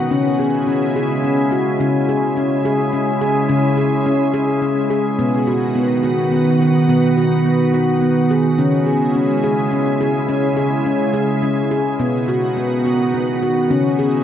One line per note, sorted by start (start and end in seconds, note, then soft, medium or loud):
0.00 0.11 F#4 medium
0.11 1.76 C#3 medium
0.11 1.79 C#3 medium
0.11 1.78 G#3 medium
0.11 0.39 C#4 medium
0.11 1.79 E4 medium
0.39 0.67 G#4 medium
0.67 0.95 C#4 medium
0.96 1.24 G#4 medium
1.24 1.52 C#4 medium
1.52 1.80 F#4 medium
1.80 3.46 C#3 medium
1.80 5.16 C#3 medium
1.80 5.16 G#3 medium
1.80 2.08 C#4 medium
1.80 5.16 E4 medium
2.09 2.37 G#4 medium
2.37 2.65 C#4 medium
2.65 2.93 G#4 medium
2.93 3.21 C#4 medium
3.21 3.49 G#4 medium
3.49 5.15 C#3 medium
3.49 3.77 C#4 medium
3.77 4.06 G#4 medium
4.06 4.34 C#4 medium
4.34 4.62 G#4 medium
4.62 4.90 C#4 medium
4.90 5.19 G#4 medium
5.18 6.85 B2 medium
5.18 8.55 D#3 medium
5.18 5.47 B3 medium
5.18 8.55 B3 medium
5.18 8.55 F#4 medium
5.47 5.75 F#4 medium
5.75 6.04 B3 medium
6.03 6.32 F#4 medium
6.32 6.60 B3 medium
6.61 6.89 F#4 medium
6.89 8.55 B2 medium
6.89 7.17 B3 medium
7.17 7.45 F#4 medium
7.45 7.73 B3 medium
7.74 8.02 F#4 medium
8.02 8.30 B3 medium
8.30 8.59 G#4 medium
8.58 10.25 C#3 medium
8.58 11.96 C#3 medium
8.58 11.96 G#3 medium
8.58 8.87 C#4 medium
8.58 11.97 E4 medium
8.87 9.15 G#4 medium
9.15 9.43 C#4 medium
9.44 9.72 G#4 medium
9.72 10.00 C#4 medium
10.01 10.29 G#4 medium
10.29 11.96 C#3 medium
10.29 10.57 C#4 medium
10.57 10.85 G#4 medium
10.86 11.14 C#4 medium
11.14 11.42 G#4 medium
11.43 11.71 C#4 medium
11.71 11.99 G#4 medium
11.99 13.67 B2 medium
11.99 13.68 D#3 medium
11.99 13.68 B3 medium
11.99 12.28 B3 medium
11.99 13.68 F#4 medium
12.28 12.56 F#4 medium
12.57 12.85 B3 medium
12.86 13.14 F#4 medium
13.14 13.42 B3 medium
13.43 13.71 F#4 medium
13.70 14.24 C#3 medium
13.70 14.24 G#3 medium
13.70 13.99 C#4 medium
13.70 14.24 E4 medium
13.99 14.24 G#4 medium